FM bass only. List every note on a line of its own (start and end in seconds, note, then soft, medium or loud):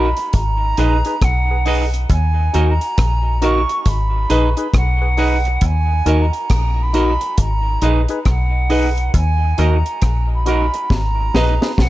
0.00 0.14 A#1 loud
0.34 0.74 G#1 medium
0.78 1.03 A#1 loud
1.22 2.06 B1 loud
2.10 2.50 D#2 loud
2.55 2.79 D#2 medium
2.98 3.66 A#1 loud
3.86 4.26 G#1 loud
4.30 4.55 A#1 medium
4.74 5.58 B1 loud
5.62 6.02 D#2 loud
6.06 6.31 D#2 medium
6.50 7.18 A#1 loud
7.38 7.78 G#1 medium
7.82 8.07 A#1 loud
8.26 9.10 B1 loud
9.14 9.54 D#2 loud
9.59 9.83 D#2 loud
10.02 10.70 A#1 loud
10.90 11.30 G#1 medium
11.34 11.59 A#1 loud
11.79 11.89 B1 medium